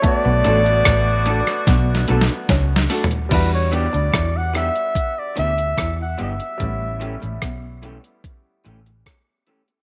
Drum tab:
CC |------------------------------------------------|x-----------------------------------------------|------------------------------------------------|
HH |x-----x--x--x-----x--x--x-----x--x--x-----o--x--|x-----x--x--x-----x--x--x-----x--x--x-----x--x--|x-----x--x--x-----x--x--x-----x--x--x-----x--x--|
SD |------------r--------r--o---o---o---o---o-------|------------r-----r-----------------r-----------|------------r-----------------------r-----------|
FT |--------------------------------------------o---|------------------------------------------------|------------------------------------------------|
BD |o-----------o-----------o-----------o-----------|o-----------o-----------o-----------o-----------|o-----------o-----------o-----------o-----------|